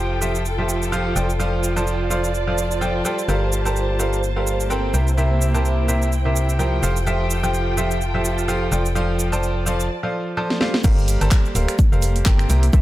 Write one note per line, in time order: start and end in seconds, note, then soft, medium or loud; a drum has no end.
0.00 1.14 F1 medium
0.00 0.19 F3 medium
0.00 0.19 F4 medium
0.00 4.94 F4 medium
0.00 0.19 G4 medium
0.00 0.19 A4 medium
0.00 2.02 A4 medium
0.00 0.19 C5 medium
0.00 0.19 G5 medium
0.00 2.02 G5 medium
0.21 0.40 F3 medium
0.21 0.40 F4 medium
0.21 0.40 G4 medium
0.21 0.40 A4 medium
0.21 0.40 C5 medium
0.21 0.40 E5 medium
0.21 shaker medium
0.35 shaker soft
0.46 shaker soft
0.58 0.90 F3 medium
0.58 0.90 F4 medium
0.58 0.90 G4 medium
0.58 0.90 A4 medium
0.58 0.90 C5 medium
0.58 0.90 E5 medium
0.69 shaker medium
0.82 shaker soft
0.92 1.13 F3 medium
0.92 1.13 F4 medium
0.92 1.13 G4 medium
0.92 1.13 A4 medium
0.92 1.13 C5 medium
0.92 1.13 F5 medium
0.92 shaker soft
1.16 3.03 F1 medium
1.16 1.29 F3 medium
1.16 1.29 F4 medium
1.16 1.29 A4 medium
1.16 1.29 C5 medium
1.16 1.29 D5 medium
1.16 1.29 G5 medium
1.16 shaker medium
1.30 shaker soft
1.39 1.73 F3 medium
1.39 1.73 F4 medium
1.39 1.73 A4 medium
1.39 1.73 C5 medium
1.39 1.73 D5 medium
1.39 1.73 F5 medium
1.39 shaker soft
1.49 7.59 C5 medium
1.64 3.95 D5 medium
1.64 shaker medium
1.76 2.08 F3 medium
1.76 2.08 F4 medium
1.76 2.08 A4 medium
1.76 2.08 C5 medium
1.76 2.08 D5 medium
1.76 2.08 A5 medium
1.76 shaker soft
1.87 shaker soft
2.10 2.29 F3 medium
2.10 2.29 F4 medium
2.10 2.29 A4 medium
2.10 2.29 C5 medium
2.10 2.29 D5 medium
2.10 2.29 F5 medium
2.10 5.70 A5 medium
2.10 shaker medium
2.24 shaker soft
2.34 shaker soft
2.47 2.79 F3 medium
2.47 2.79 F4 medium
2.47 2.79 A4 medium
2.47 2.79 C5 medium
2.47 2.79 D5 medium
2.47 2.79 F5 medium
2.58 shaker medium
2.71 shaker soft
2.81 3.02 F3 medium
2.81 3.02 F4 medium
2.81 3.02 A4 medium
2.81 3.02 C5 medium
2.81 3.02 D5 medium
2.81 3.02 G5 medium
2.81 shaker soft
3.05 3.18 G3 medium
3.05 3.18 F4 medium
3.05 3.18 A4 medium
3.05 3.18 C5 medium
3.05 3.18 D5 medium
3.05 3.18 G5 medium
3.05 shaker medium
3.19 shaker soft
3.28 4.92 G1 medium
3.28 3.62 G3 medium
3.28 3.62 G4 medium
3.28 3.62 A4 medium
3.28 3.62 A#4 medium
3.28 3.62 C5 medium
3.28 3.62 F5 medium
3.28 shaker soft
3.53 shaker medium
3.65 3.97 G3 medium
3.65 3.97 G4 medium
3.65 3.97 A4 medium
3.65 3.97 A#4 medium
3.65 3.97 C5 medium
3.65 3.97 A5 medium
3.65 shaker soft
3.76 shaker soft
3.84 6.83 A#3 medium
3.99 4.18 G3 medium
3.99 4.18 G4 medium
3.99 4.18 A4 medium
3.99 4.18 A#4 medium
3.99 4.18 C5 medium
3.99 4.18 F5 medium
3.99 shaker medium
4.13 shaker soft
4.23 shaker soft
4.36 4.68 G3 medium
4.36 4.68 G4 medium
4.36 4.68 A4 medium
4.36 4.68 A#4 medium
4.36 4.68 C5 medium
4.36 4.68 F5 medium
4.47 shaker medium
4.60 shaker soft
4.70 4.91 C4 medium
4.70 4.91 G4 medium
4.70 4.91 A4 medium
4.70 4.91 A#4 medium
4.70 4.91 C5 medium
4.70 4.91 G5 medium
4.70 shaker soft
4.94 6.81 C2 medium
4.94 5.07 C3 medium
4.94 6.83 E4 medium
4.94 5.07 E4 medium
4.94 5.07 G4 medium
4.94 5.07 A#4 medium
4.94 5.07 C5 medium
4.94 5.07 G5 medium
4.94 shaker medium
5.08 shaker soft
5.17 5.51 C3 medium
5.17 5.51 E4 medium
5.17 5.51 G4 medium
5.17 5.51 A#4 medium
5.17 5.51 C5 medium
5.17 5.51 E5 medium
5.17 shaker soft
5.36 9.58 G5 medium
5.42 shaker medium
5.54 5.86 C3 medium
5.54 5.86 E4 medium
5.54 5.86 G4 medium
5.54 5.86 A#4 medium
5.54 5.86 C5 medium
5.54 5.86 A5 medium
5.54 shaker soft
5.65 shaker soft
5.88 6.07 C3 medium
5.88 6.07 E4 medium
5.88 6.07 G4 medium
5.88 6.07 A#4 medium
5.88 6.07 C5 medium
5.88 6.07 E5 medium
5.88 shaker medium
6.02 shaker soft
6.12 shaker soft
6.25 6.57 C3 medium
6.25 6.57 E4 medium
6.25 6.57 G4 medium
6.25 6.57 A#4 medium
6.25 6.57 C5 medium
6.25 6.57 E5 medium
6.36 shaker medium
6.49 shaker soft
6.59 6.80 F3 medium
6.59 6.80 E4 medium
6.59 6.80 G4 medium
6.59 6.80 A#4 medium
6.59 6.80 C5 medium
6.59 6.80 G5 medium
6.59 shaker soft
6.83 8.70 F1 medium
6.83 6.96 F3 medium
6.83 9.90 F4 medium
6.83 6.96 F4 medium
6.83 6.96 G4 medium
6.83 6.96 A4 medium
6.83 6.96 C5 medium
6.83 6.96 F5 medium
6.83 shaker medium
6.97 shaker soft
7.06 7.40 F3 medium
7.06 7.40 F4 medium
7.06 7.40 G4 medium
7.06 7.40 A4 medium
7.06 7.40 C5 medium
7.06 7.40 E5 medium
7.06 shaker soft
7.30 9.58 A4 medium
7.30 shaker medium
7.43 7.75 F3 medium
7.43 7.75 F4 medium
7.43 7.75 G4 medium
7.43 7.75 A4 medium
7.43 7.75 C5 medium
7.43 7.75 G5 medium
7.43 shaker soft
7.54 shaker soft
7.77 7.96 F3 medium
7.77 7.96 F4 medium
7.77 7.96 G4 medium
7.77 7.96 A4 medium
7.77 7.96 C5 medium
7.77 7.96 E5 medium
7.77 shaker medium
7.91 shaker soft
8.01 shaker soft
8.14 8.46 F3 medium
8.14 8.46 F4 medium
8.14 8.46 G4 medium
8.14 8.46 A4 medium
8.14 8.46 C5 medium
8.14 8.46 E5 medium
8.25 shaker medium
8.38 shaker soft
8.48 8.69 F3 medium
8.48 8.69 F4 medium
8.48 8.69 G4 medium
8.48 8.69 A4 medium
8.48 8.69 C5 medium
8.48 8.69 F5 medium
8.48 shaker soft
8.72 9.90 F1 medium
8.72 8.85 F3 medium
8.72 8.85 F4 medium
8.72 8.85 A4 medium
8.72 8.85 C5 medium
8.72 8.85 D5 medium
8.72 8.85 G5 medium
8.72 shaker medium
8.86 shaker soft
8.95 9.29 F3 medium
8.95 9.29 F4 medium
8.95 9.29 A4 medium
8.95 9.29 C5 medium
8.95 9.29 D5 medium
8.95 9.29 F5 loud
8.95 shaker soft
9.17 9.90 C5 medium
9.17 shaker medium
9.32 9.64 F3 medium
9.32 9.64 F4 medium
9.32 9.64 A4 medium
9.32 9.64 C5 medium
9.32 9.64 D5 medium
9.32 9.64 A5 loud
9.32 shaker soft
9.43 shaker soft
9.57 9.90 D5 medium
9.66 9.85 F3 medium
9.66 9.85 F4 medium
9.66 9.85 A4 medium
9.66 9.85 C5 medium
9.66 9.85 D5 medium
9.66 9.85 F5 medium
9.66 9.90 A5 medium
9.66 shaker medium
9.80 shaker soft
10.03 10.35 F3 medium
10.03 10.35 F4 medium
10.03 10.35 A4 medium
10.03 10.35 C5 medium
10.03 10.35 D5 medium
10.03 10.35 F5 medium
10.37 10.56 F3 medium
10.37 10.56 F4 medium
10.37 10.56 A4 medium
10.37 10.56 C5 medium
10.37 10.56 D5 medium
10.37 10.56 A5 medium
10.50 snare soft
10.61 10.74 G3 medium
10.61 10.74 F4 medium
10.61 10.74 A4 medium
10.61 10.74 C5 medium
10.61 10.74 D5 medium
10.61 10.74 F5 loud
10.61 snare medium
10.74 snare medium
10.84 11.17 G1 loud
10.84 11.18 G3 medium
10.84 11.18 G4 medium
10.84 11.18 A4 medium
10.84 11.18 A#4 medium
10.84 11.18 C5 medium
10.84 11.18 F5 loud
10.84 kick loud
10.84 closed hi-hat medium
10.84 crash loud
10.84 shaker medium
10.84 shaker soft
10.92 12.82 A#3 medium
10.98 shaker soft
11.08 open hi-hat loud
11.08 shaker medium
11.21 11.30 G1 loud
11.21 11.53 G3 medium
11.21 11.53 G4 medium
11.21 11.53 A4 medium
11.21 11.53 A#4 medium
11.21 11.53 C5 medium
11.21 11.53 A5 loud
11.21 closed hi-hat medium
11.21 closed hi-hat soft
11.21 shaker soft
11.31 kick loud
11.31 snare loud
11.31 clap loud
11.31 closed hi-hat medium
11.31 shaker loud
11.31 shaker soft
11.45 shaker soft
11.55 11.66 D1 medium
11.55 11.74 G3 medium
11.55 11.74 G4 medium
11.55 11.74 A4 medium
11.55 11.74 A#4 medium
11.55 11.74 C5 medium
11.55 11.74 F5 medium
11.55 open hi-hat loud
11.55 shaker medium
11.68 finger snap medium
11.68 closed hi-hat medium
11.68 shaker soft
11.79 kick loud
11.79 closed hi-hat medium
11.79 shaker medium
11.79 shaker soft
11.92 12.23 F1 medium
11.92 12.24 G3 medium
11.92 12.24 G4 medium
11.92 12.24 A4 medium
11.92 12.24 A#4 medium
11.92 12.24 C5 medium
11.92 12.24 F5 medium
11.92 shaker soft
12.02 open hi-hat loud
12.02 shaker medium
12.16 closed hi-hat medium
12.16 shaker soft
12.25 12.46 G1 medium
12.25 12.47 C4 medium
12.25 12.47 G4 medium
12.25 12.47 A4 medium
12.25 12.47 A#4 medium
12.25 12.47 C5 medium
12.25 12.47 G5 loud
12.25 kick loud
12.25 snare loud
12.25 clap loud
12.25 closed hi-hat medium
12.25 shaker medium
12.25 shaker soft
12.39 finger snap medium
12.39 shaker soft
12.50 12.70 C2 medium
12.50 12.63 C3 medium
12.50 12.82 E4 medium
12.50 12.63 E4 medium
12.50 12.63 G4 medium
12.50 12.63 A#4 medium
12.50 12.63 C5 medium
12.50 12.63 G5 loud
12.50 open hi-hat medium
12.50 shaker medium
12.63 closed hi-hat medium
12.63 shaker soft
12.73 12.82 C2 loud
12.73 12.82 C3 medium
12.73 12.82 E4 medium
12.73 12.82 G4 medium
12.73 12.82 A#4 medium
12.73 12.82 C5 medium
12.73 12.82 E5 loud
12.73 kick loud
12.73 closed hi-hat medium
12.73 shaker medium
12.73 shaker soft